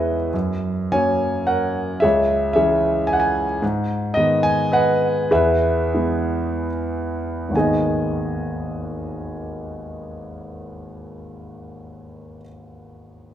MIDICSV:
0, 0, Header, 1, 2, 480
1, 0, Start_track
1, 0, Key_signature, 5, "minor"
1, 0, Tempo, 567108
1, 287, Time_signature, 3, 2, 24, 8
1, 1720, Tempo, 537634
1, 4120, Tempo, 583090
1, 4600, Tempo, 645856
1, 5080, Tempo, 752823
1, 5560, Tempo, 841515
1, 6520, Tempo, 809717
1, 7960, Tempo, 858369
1, 9374, End_track
2, 0, Start_track
2, 0, Title_t, "Grand piano"
2, 0, Program_c, 0, 0
2, 0, Control_c, 0, 64, 127
2, 0, Note_on_c, 0, 40, 54
2, 0, Note_on_c, 0, 52, 34
2, 0, Note_on_c, 0, 56, 33
2, 0, Note_on_c, 0, 59, 37
2, 0, Note_on_c, 0, 68, 33
2, 0, Note_on_c, 0, 71, 36
2, 0, Note_on_c, 0, 73, 63
2, 0, Note_on_c, 0, 75, 63
2, 0, Note_on_c, 0, 76, 51
2, 137, Note_off_c, 0, 76, 0
2, 251, Note_off_c, 0, 68, 0
2, 251, Note_off_c, 0, 71, 0
2, 259, Note_off_c, 0, 40, 0
2, 263, Note_off_c, 0, 52, 0
2, 263, Note_off_c, 0, 56, 0
2, 265, Note_off_c, 0, 59, 0
2, 285, Note_on_c, 0, 42, 49
2, 298, Control_c, 0, 64, 0
2, 299, Note_off_c, 0, 73, 0
2, 304, Note_off_c, 0, 75, 0
2, 429, Control_c, 0, 64, 127
2, 778, Note_on_c, 0, 54, 37
2, 778, Note_on_c, 0, 58, 34
2, 778, Note_on_c, 0, 73, 52
2, 778, Note_on_c, 0, 80, 78
2, 787, Note_on_c, 0, 61, 40
2, 1233, Note_off_c, 0, 73, 0
2, 1242, Note_on_c, 0, 78, 67
2, 1243, Note_on_c, 0, 70, 51
2, 1246, Note_on_c, 0, 73, 51
2, 1268, Note_off_c, 0, 80, 0
2, 1683, Note_off_c, 0, 78, 0
2, 1684, Note_off_c, 0, 70, 0
2, 1686, Note_off_c, 0, 42, 0
2, 1686, Note_off_c, 0, 73, 0
2, 1693, Note_on_c, 0, 76, 78
2, 1696, Note_off_c, 0, 54, 0
2, 1696, Note_off_c, 0, 58, 0
2, 1700, Note_off_c, 0, 61, 0
2, 1710, Note_on_c, 0, 68, 52
2, 1713, Note_on_c, 0, 73, 61
2, 1724, Note_on_c, 0, 37, 56
2, 1734, Control_c, 0, 64, 0
2, 1876, Control_c, 0, 64, 127
2, 2154, Note_off_c, 0, 76, 0
2, 2167, Note_on_c, 0, 76, 74
2, 2174, Note_off_c, 0, 73, 0
2, 2176, Note_off_c, 0, 68, 0
2, 2187, Note_on_c, 0, 73, 53
2, 2188, Note_on_c, 0, 52, 43
2, 2190, Note_on_c, 0, 68, 52
2, 2192, Note_on_c, 0, 56, 36
2, 2197, Note_on_c, 0, 61, 48
2, 2648, Note_on_c, 0, 80, 75
2, 2666, Note_off_c, 0, 76, 0
2, 2701, Note_on_c, 0, 78, 64
2, 2711, Note_off_c, 0, 80, 0
2, 2760, Note_on_c, 0, 80, 74
2, 2772, Note_off_c, 0, 78, 0
2, 2863, Note_off_c, 0, 73, 0
2, 2864, Note_off_c, 0, 68, 0
2, 2991, Note_off_c, 0, 80, 0
2, 3105, Note_off_c, 0, 37, 0
2, 3106, Note_off_c, 0, 52, 0
2, 3108, Note_off_c, 0, 56, 0
2, 3111, Note_off_c, 0, 61, 0
2, 3139, Note_on_c, 0, 44, 68
2, 3152, Control_c, 0, 64, 0
2, 3313, Control_c, 0, 64, 127
2, 3601, Note_on_c, 0, 75, 78
2, 3626, Note_on_c, 0, 51, 41
2, 3630, Note_on_c, 0, 56, 40
2, 3632, Note_on_c, 0, 59, 47
2, 3862, Note_on_c, 0, 80, 84
2, 3868, Note_off_c, 0, 75, 0
2, 4118, Note_on_c, 0, 75, 54
2, 4123, Note_on_c, 0, 71, 53
2, 4124, Note_off_c, 0, 80, 0
2, 4130, Note_on_c, 0, 78, 76
2, 4566, Note_off_c, 0, 75, 0
2, 4568, Note_off_c, 0, 44, 0
2, 4569, Note_off_c, 0, 71, 0
2, 4574, Note_off_c, 0, 51, 0
2, 4576, Note_off_c, 0, 56, 0
2, 4577, Note_off_c, 0, 59, 0
2, 4604, Note_on_c, 0, 40, 56
2, 4604, Note_on_c, 0, 71, 51
2, 4605, Note_on_c, 0, 68, 49
2, 4609, Control_c, 0, 64, 0
2, 4612, Note_on_c, 0, 76, 71
2, 4618, Note_off_c, 0, 78, 0
2, 4763, Control_c, 0, 64, 127
2, 5074, Note_on_c, 0, 52, 36
2, 5077, Note_on_c, 0, 56, 32
2, 5082, Note_on_c, 0, 59, 41
2, 5536, Note_off_c, 0, 71, 0
2, 5537, Note_off_c, 0, 68, 0
2, 5540, Note_off_c, 0, 76, 0
2, 6009, Note_on_c, 0, 32, 41
2, 6015, Note_off_c, 0, 52, 0
2, 6016, Note_off_c, 0, 56, 0
2, 6018, Note_off_c, 0, 59, 0
2, 6019, Note_off_c, 0, 40, 0
2, 6020, Note_on_c, 0, 39, 38
2, 6032, Note_on_c, 0, 51, 39
2, 6041, Note_on_c, 0, 59, 40
2, 6047, Control_c, 0, 64, 0
2, 6047, Note_on_c, 0, 80, 63
2, 6054, Note_on_c, 0, 68, 38
2, 6063, Note_on_c, 0, 75, 46
2, 6133, Control_c, 0, 64, 127
2, 8830, Note_off_c, 0, 32, 0
2, 8840, Note_off_c, 0, 39, 0
2, 8852, Note_off_c, 0, 51, 0
2, 8861, Note_off_c, 0, 59, 0
2, 8867, Note_off_c, 0, 80, 0
2, 8873, Note_off_c, 0, 68, 0
2, 8883, Note_off_c, 0, 75, 0
2, 9374, End_track
0, 0, End_of_file